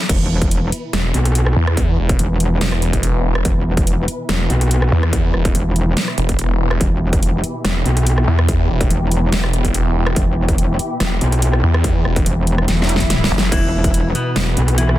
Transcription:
0.09 0.71 E1 loud
0.09 14.99 B2 medium
0.09 14.99 E3 medium
0.09 14.99 E4 medium
0.09 6.79 B4 medium
0.09 kick loud
0.09 closed hi-hat medium
0.09 crash loud
0.42 kick loud
0.42 closed hi-hat medium
0.51 closed hi-hat medium
0.72 closed hi-hat medium
0.93 1.13 E1 loud
0.93 cross-stick medium
0.93 snare loud
0.93 closed hi-hat medium
1.14 1.55 B1 loud
1.14 closed hi-hat medium
1.25 closed hi-hat medium
1.35 closed hi-hat medium
1.46 cross-stick medium
1.56 1.97 E2 loud
1.67 cross-stick medium
1.77 kick loud
1.77 closed hi-hat medium
1.98 2.18 E1 loud
2.09 kick loud
2.09 closed hi-hat medium
2.19 2.60 E1 medium
2.19 closed hi-hat medium
2.40 closed hi-hat medium
2.61 3.43 E1 medium
2.61 snare loud
2.61 closed hi-hat medium
2.72 cross-stick medium
2.82 closed hi-hat medium
2.93 kick medium
2.93 closed hi-hat medium
3.03 closed hi-hat medium
3.35 cross-stick medium
3.45 4.06 E1 loud
3.45 kick loud
3.45 closed hi-hat medium
3.77 kick loud
3.77 closed hi-hat medium
3.87 closed hi-hat medium
4.08 closed hi-hat medium
4.29 4.48 E1 loud
4.29 cross-stick medium
4.29 snare loud
4.29 closed hi-hat medium
4.50 4.90 B1 medium
4.50 closed hi-hat medium
4.61 closed hi-hat medium
4.71 closed hi-hat medium
4.82 cross-stick soft
4.92 5.32 E2 loud
5.03 cross-stick medium
5.13 kick loud
5.13 closed hi-hat medium
5.34 5.53 E1 medium
5.34 cross-stick medium
5.45 kick loud
5.45 closed hi-hat medium
5.55 5.95 E1 medium
5.55 closed hi-hat medium
5.76 closed hi-hat medium
5.97 snare loud
5.97 closed hi-hat medium
6.08 cross-stick medium
6.18 6.79 E1 loud
6.18 closed hi-hat medium
6.29 kick medium
6.29 closed hi-hat medium
6.39 closed hi-hat medium
6.71 cross-stick medium
6.81 7.42 E1 loud
6.81 13.50 G4 medium
6.81 kick loud
6.81 closed hi-hat medium
7.13 kick loud
7.13 closed hi-hat medium
7.23 closed hi-hat medium
7.44 closed hi-hat medium
7.65 7.84 E1 loud
7.65 cross-stick medium
7.65 snare loud
7.65 closed hi-hat medium
7.86 8.26 B1 loud
7.86 closed hi-hat medium
7.97 closed hi-hat medium
8.07 closed hi-hat medium
8.18 cross-stick medium
8.28 8.68 E2 loud
8.39 cross-stick medium
8.48 kick loud
8.48 closed hi-hat medium
8.70 8.89 E1 loud
8.81 kick loud
8.81 closed hi-hat medium
8.90 9.31 E1 medium
8.90 closed hi-hat medium
9.11 closed hi-hat medium
9.32 10.15 E1 loud
9.32 snare loud
9.32 closed hi-hat medium
9.44 cross-stick medium
9.53 closed hi-hat medium
9.65 kick medium
9.65 closed hi-hat medium
9.74 closed hi-hat medium
10.07 cross-stick medium
10.16 10.78 E1 loud
10.16 kick loud
10.16 closed hi-hat medium
10.48 kick loud
10.48 closed hi-hat medium
10.58 closed hi-hat medium
10.79 closed hi-hat medium
11.00 11.20 E1 loud
11.00 cross-stick medium
11.00 snare loud
11.00 closed hi-hat medium
11.21 11.62 B1 loud
11.21 closed hi-hat medium
11.32 closed hi-hat medium
11.42 closed hi-hat medium
11.53 cross-stick medium
11.63 12.04 E2 medium
11.74 cross-stick medium
11.84 kick loud
11.84 closed hi-hat medium
12.05 12.25 E1 loud
12.05 cross-stick medium
12.16 kick loud
12.16 closed hi-hat medium
12.26 12.67 E1 loud
12.26 closed hi-hat medium
12.47 closed hi-hat medium
12.58 cross-stick medium
12.68 13.30 E1 loud
12.68 snare medium
12.68 closed hi-hat medium
12.68 swell medium
12.82 snare medium
12.89 closed hi-hat medium
12.96 snare medium
13.00 kick medium
13.00 closed hi-hat medium
13.10 snare medium
13.10 closed hi-hat medium
13.24 snare loud
13.31 13.50 F#1 loud
13.38 snare loud
13.52 14.13 E1 loud
13.52 14.07 E3 medium
13.52 14.07 E4 medium
13.52 14.99 B4 medium
13.52 kick loud
13.52 closed hi-hat medium
13.52 crash medium
13.84 kick loud
13.84 closed hi-hat medium
13.94 closed hi-hat medium
14.15 14.70 B2 medium
14.15 14.70 B3 medium
14.15 closed hi-hat medium
14.36 14.55 E1 medium
14.36 cross-stick medium
14.36 snare loud
14.36 closed hi-hat medium
14.57 14.97 B1 medium
14.57 closed hi-hat medium
14.68 closed hi-hat medium
14.78 14.99 E3 medium
14.78 14.99 E4 medium
14.78 closed hi-hat medium
14.89 cross-stick medium

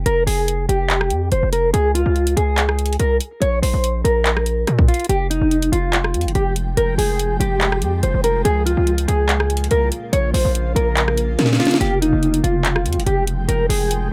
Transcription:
0.06 0.26 F1 loud
0.06 0.23 A#4 loud
0.06 closed hi-hat medium
0.27 0.67 F1 loud
0.27 0.66 G#4 medium
0.27 open hi-hat medium
0.48 closed hi-hat medium
0.69 1.12 F1 loud
0.69 1.28 G4 medium
0.69 closed hi-hat medium
0.90 clap loud
0.90 closed hi-hat medium
1.01 cross-stick loud
1.10 1.31 F2 loud
1.10 closed hi-hat medium
1.32 1.42 F1 loud
1.32 1.49 C5 medium
1.32 closed hi-hat medium
1.43 1.72 F1 loud
1.53 1.70 A#4 medium
1.53 closed hi-hat medium
1.74 2.05 C#2 loud
1.74 1.91 G#4 loud
1.74 closed hi-hat medium
1.95 2.34 F4 medium
1.95 closed hi-hat medium
2.06 2.35 C#2 loud
2.16 closed hi-hat medium
2.27 closed hi-hat medium
2.37 2.97 C#2 loud
2.37 2.96 G#4 medium
2.37 closed hi-hat medium
2.58 clap loud
2.58 closed hi-hat medium
2.69 cross-stick loud
2.79 closed hi-hat medium
2.86 closed hi-hat medium
2.93 closed hi-hat medium
3.00 3.20 C2 loud
3.00 3.17 A#4 medium
3.00 closed hi-hat medium
3.21 closed hi-hat medium
3.42 3.62 A#1 loud
3.42 3.58 C#5 loud
3.42 closed hi-hat medium
3.62 3.73 A#1 loud
3.62 4.02 C5 medium
3.62 open hi-hat medium
3.74 4.03 A#1 loud
3.84 closed hi-hat medium
4.04 4.65 A#1 loud
4.04 4.84 A#4 medium
4.04 closed hi-hat medium
4.25 clap loud
4.25 closed hi-hat medium
4.37 cross-stick loud
4.46 closed hi-hat medium
4.67 4.88 A#2 loud
4.67 cross-stick medium
4.67 closed hi-hat medium
4.79 kick loud
4.88 5.05 F4 medium
4.88 closed hi-hat medium
4.94 closed hi-hat medium
5.00 closed hi-hat medium
5.04 closed hi-hat medium
5.09 5.40 F1 loud
5.09 8.42 F3 medium
5.09 8.42 G#3 medium
5.09 5.26 G4 loud
5.09 8.42 G5 medium
5.09 closed hi-hat medium
5.30 5.70 D#4 medium
5.30 closed hi-hat medium
5.41 5.71 F1 loud
5.51 closed hi-hat medium
5.62 closed hi-hat medium
5.72 6.16 F1 loud
5.72 6.31 F4 medium
5.72 closed hi-hat medium
5.93 clap loud
5.93 closed hi-hat medium
6.04 cross-stick loud
6.14 6.27 F2 loud
6.14 closed hi-hat medium
6.21 closed hi-hat medium
6.25 6.35 F1 loud
6.25 closed hi-hat medium
6.35 6.76 F1 loud
6.35 6.52 G4 medium
6.35 closed hi-hat medium
6.56 closed hi-hat medium
6.77 6.97 F1 loud
6.77 6.94 A#4 loud
6.77 closed hi-hat medium
6.98 7.38 F1 loud
6.98 7.38 G#4 medium
6.98 open hi-hat medium
7.19 closed hi-hat medium
7.40 7.84 F1 loud
7.40 7.99 G4 medium
7.40 closed hi-hat medium
7.61 clap loud
7.61 closed hi-hat medium
7.72 cross-stick loud
7.82 8.02 F2 loud
7.82 closed hi-hat medium
8.03 8.14 F1 loud
8.03 8.20 C5 medium
8.03 closed hi-hat medium
8.14 8.44 F1 loud
8.24 8.41 A#4 medium
8.24 closed hi-hat medium
8.45 8.76 C#2 loud
8.45 11.77 C#3 medium
8.45 8.62 G#4 loud
8.45 closed hi-hat medium
8.66 9.05 F4 medium
8.66 closed hi-hat medium
8.77 9.07 C#2 loud
8.87 closed hi-hat soft
8.98 closed hi-hat medium
9.08 9.68 C#2 loud
9.08 9.67 G#4 medium
9.08 closed hi-hat medium
9.29 clap loud
9.29 closed hi-hat medium
9.40 cross-stick loud
9.50 closed hi-hat medium
9.57 closed hi-hat medium
9.64 closed hi-hat medium
9.71 9.91 C2 loud
9.71 9.88 A#4 medium
9.71 closed hi-hat medium
9.92 closed hi-hat medium
10.13 10.33 A#1 loud
10.13 10.30 C#5 loud
10.13 closed hi-hat medium
10.34 10.45 A#1 loud
10.34 10.73 C5 medium
10.34 open hi-hat medium
10.45 10.75 A#1 loud
10.55 closed hi-hat medium
10.76 11.36 A#1 loud
10.76 11.56 A#4 medium
10.76 closed hi-hat medium
10.97 clap loud
10.97 closed hi-hat medium
11.08 cross-stick loud
11.17 closed hi-hat medium
11.39 11.59 A#2 loud
11.39 snare medium
11.39 closed hi-hat medium
11.46 snare medium
11.53 snare medium
11.60 11.77 F4 medium
11.60 snare medium
11.60 closed hi-hat medium
11.65 snare loud
11.65 closed hi-hat medium
11.71 snare loud
11.71 closed hi-hat medium
11.76 closed hi-hat medium
11.81 12.12 F1 loud
11.81 14.13 F3 medium
11.81 14.13 G#3 medium
11.81 11.98 G4 loud
11.81 14.13 G5 medium
11.81 closed hi-hat medium
12.02 12.41 D#4 medium
12.02 closed hi-hat medium
12.13 12.42 F1 loud
12.23 closed hi-hat soft
12.34 closed hi-hat medium
12.44 12.87 F1 loud
12.44 13.03 F4 medium
12.44 closed hi-hat medium
12.65 clap loud
12.65 closed hi-hat medium
12.76 cross-stick loud
12.86 12.98 F2 loud
12.86 closed hi-hat medium
12.93 closed hi-hat medium
12.97 13.06 F1 loud
12.97 closed hi-hat medium
13.06 13.47 F1 loud
13.06 13.23 G4 medium
13.06 closed hi-hat medium
13.27 closed hi-hat medium
13.48 13.69 F1 loud
13.48 13.65 A#4 loud
13.48 closed hi-hat medium
13.69 14.10 F1 loud
13.69 14.09 G#4 medium
13.69 open hi-hat medium
13.91 closed hi-hat medium

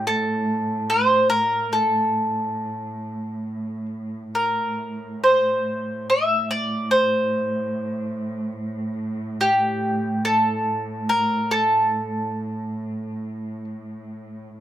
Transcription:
0.00 4.33 A2 soft
0.07 0.92 A4 medium
0.90 1.29 C5 medium
1.30 1.74 A#4 medium
1.73 3.86 A4 medium
4.34 14.56 A2 soft
4.34 5.23 A#4 medium
5.24 6.09 C5 medium
6.10 6.48 E5 medium
6.51 6.89 D5 medium
6.91 8.92 C5 medium
9.41 10.25 G4 medium
10.25 11.11 A4 medium
11.09 11.52 A#4 medium
11.51 13.64 A4 medium
14.57 14.60 A2 soft

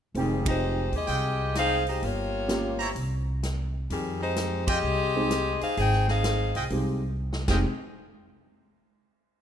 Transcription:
0.15 0.88 F1 medium
0.15 0.45 G3 medium
0.15 1.46 G#3 medium
0.15 1.46 C4 soft
0.15 1.46 D#4 medium
0.15 0.46 G#4 medium
0.15 1.47 G5 medium
0.15 open hi-hat soft
0.19 0.46 D#3 medium
0.19 0.46 C4 medium
0.46 0.90 G#3 medium
0.46 0.90 D#4 medium
0.46 0.90 G4 medium
0.46 0.91 C5 medium
0.46 kick medium
0.46 ride medium
0.92 1.07 D#2 medium
0.92 1.56 C4 medium
0.92 1.57 G4 medium
0.92 1.56 G#4 medium
0.92 1.57 D#5 medium
0.92 kick soft
0.92 open hi-hat soft
1.08 1.98 C2 medium
1.08 1.80 F4 medium
1.08 1.80 D#5 medium
1.08 1.80 G5 medium
1.08 open hi-hat soft
1.55 1.85 D#4 loud
1.55 1.85 G#4 medium
1.55 1.85 C5 medium
1.55 1.85 F5 loud
1.55 snare medium
1.55 closed hi-hat soft
1.87 2.03 G#3 medium
1.87 2.03 D#4 medium
1.87 2.03 G4 medium
1.87 2.03 C5 medium
1.87 open hi-hat soft
2.02 2.92 G1 medium
2.02 2.97 A#3 medium
2.02 2.97 F4 medium
2.02 2.97 G4 medium
2.02 2.97 C#5 loud
2.02 open hi-hat soft
2.48 2.77 A#3 medium
2.48 2.77 C#4 soft
2.48 2.77 F4 soft
2.48 2.78 G4 medium
2.48 snare medium
2.48 closed hi-hat soft
2.79 2.90 E4 medium
2.79 2.90 C5 medium
2.79 2.90 C#5 medium
2.79 2.90 A#5 loud
2.79 open hi-hat soft
2.95 3.85 C2 medium
2.95 open hi-hat soft
3.43 snare medium
3.43 closed hi-hat soft
3.90 4.80 F2 medium
3.90 4.19 D#3 medium
3.90 4.19 G3 medium
3.90 4.19 C4 medium
3.90 4.19 G#4 medium
3.90 open hi-hat soft
4.21 4.65 G#3 medium
4.21 4.65 D#4 medium
4.21 4.64 G4 medium
4.21 4.65 C5 medium
4.36 snare medium
4.36 closed hi-hat soft
4.67 5.57 C4 medium
4.67 4.78 F4 medium
4.67 5.57 G4 medium
4.67 4.78 G#4 medium
4.67 5.57 G#4 medium
4.67 4.78 D#5 medium
4.67 5.57 D#5 loud
4.67 4.78 G5 loud
4.67 kick medium
4.67 ride medium
4.83 5.57 C2 medium
5.16 5.29 G#3 medium
5.16 5.30 C4 medium
5.16 5.30 D#4 medium
5.16 5.30 G4 medium
5.30 snare medium
5.30 closed hi-hat medium
5.61 5.77 D#4 medium
5.61 5.76 G#4 medium
5.61 5.77 C5 medium
5.61 5.77 F5 medium
5.61 muted upright bass stroke soft
5.61 open hi-hat soft
5.77 6.51 G#1 medium
5.77 6.06 D#4 medium
5.77 6.06 G#4 medium
5.77 6.06 C5 medium
5.77 6.06 G5 loud
5.77 open hi-hat soft
5.93 snare soft
6.08 6.67 D#4 medium
6.08 6.67 G#4 medium
6.08 6.67 C5 medium
6.08 6.67 F5 medium
6.08 snare soft
6.24 snare medium
6.24 closed hi-hat medium
6.55 6.70 C2 medium
6.55 6.66 F4 medium
6.55 6.66 G#4 medium
6.55 6.65 D#5 medium
6.55 6.66 G5 medium
6.55 open hi-hat soft
6.70 7.44 C2 medium
6.70 6.98 G#3 medium
6.70 6.99 C4 soft
6.70 6.99 D#4 soft
6.70 6.99 G4 medium
6.70 open hi-hat soft
7.33 snare medium
7.48 7.63 F1 medium
7.48 7.63 G#3 medium
7.48 7.63 C4 soft
7.48 7.63 D#4 medium
7.48 7.59 F4 medium
7.48 7.63 G4 medium
7.48 7.59 G#4 medium
7.48 7.59 D#5 medium
7.48 7.59 G5 medium
7.48 kick medium
7.48 snare medium
7.48 crash medium

